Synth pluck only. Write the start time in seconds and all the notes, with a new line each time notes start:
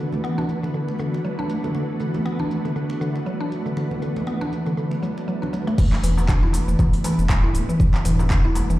0.24 B3
0.38 D4
0.63 D3
0.74 D3
0.99 D3
1.25 F#3
1.39 D4
1.64 D3
1.75 D3
2.00 D3
2.25 B3
2.40 D4
2.65 D3
2.76 D3
3.01 D3
3.26 F#3
3.41 D4
3.66 D3
3.77 D3
4.02 D3
4.27 B3
4.41 D4
4.66 D3
4.77 D3
5.03 F#3
5.28 F#3
5.42 D4
5.53 F#3
5.67 A3
5.78 E3
6.03 E3
6.29 D4
6.43 E4
6.68 E3
6.79 E3
7.04 E3
7.30 G3
7.44 E4
7.69 E3
7.80 E3
8.05 E3
8.30 D4
8.45 E4
8.70 E3